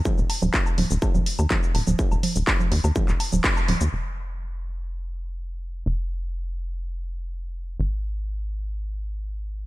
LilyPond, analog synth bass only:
\new Staff \with { instrumentName = "Analog synth bass" } { \clef bass \time 4/4 \key f \minor \tempo 4 = 124 r16 ees,,16 r16 ees,,16 r8 ees,,16 ees,,16 r16 ees,,16 r16 ees,16 r8 ees,,16 ees,,16 | r16 ees,,16 r16 ees,,16 r8 ees,16 ees,16 r16 ees,,16 r16 ees,,16 r8 ees,,16 ees,16 | f,,1 | f,,1 |
aes,,1 | }